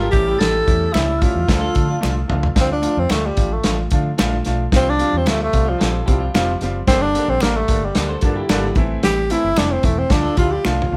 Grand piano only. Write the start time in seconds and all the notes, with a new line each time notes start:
0.11 G3 A3 C#4 E4
0.66 G3 A3 C#4 E4
0.93 G3 A3 C#4 E4
1.22 G3 A3 C#4 E4
1.47 F3 A3 D4 F4
1.74 F3 A3 D4 F4
2.01 F3 A3 D4 F4
2.28 F3 A3 D4 F4
2.55 F3 A3 D4 F4
2.82 F3 A3 D4 F4
3.09 F3 A3 D4 F4
3.37 F3 A3 D4 F4
3.63 F3 A3 D4 F4
3.91 F3 A3 D4 F4
4.18 F3 A3 D4 F4
4.46 F3 A3 D4 F4
4.72 F3 G3 C4 F4
4.99 F3 G3 C4 F4
5.25 F3 G3 C4 F4
5.53 F3 G3 C4 F4
5.80 F3 G3 C4 F4
6.07 F3 G3 C4 F4
6.34 F3 G3 C4 F4
6.62 F3 G3 C4 F4
6.88 D3 G3 A#3 D4
7.15 D3 G3 A#3 D4
7.42 D3 G3 A#3 D4
7.69 D3 G3 A#3 D4
7.96 D3 G3 A#3 D4
8.23 D3 G3 A#3 D4
8.49 D3 G3 A#3 D4
8.76 E3 A3 C4 E4
9.30 E3 A3 C4 E4
9.57 E3 A3 C4 E4
9.83 E3 A3 C4 E4
10.09 F3 A3 D4 F4
10.36 F3 A3 D4 F4
10.64 F3 A3 D4 F4
10.92 F3 A3 D4 F4